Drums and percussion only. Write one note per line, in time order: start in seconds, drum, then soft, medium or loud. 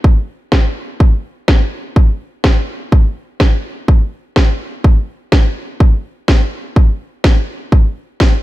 0.04 kick loud
0.52 kick loud
0.52 snare loud
1.00 kick loud
1.48 kick loud
1.48 snare loud
1.96 kick loud
2.44 kick loud
2.44 snare loud
2.92 kick loud
3.40 kick loud
3.40 snare loud
3.88 kick loud
4.36 kick loud
4.36 snare loud
4.84 kick loud
5.32 kick loud
5.32 snare loud
5.80 kick loud
6.28 kick loud
6.28 snare loud
6.76 kick loud
7.24 kick loud
7.24 snare loud
7.72 kick loud
8.20 kick loud
8.20 snare loud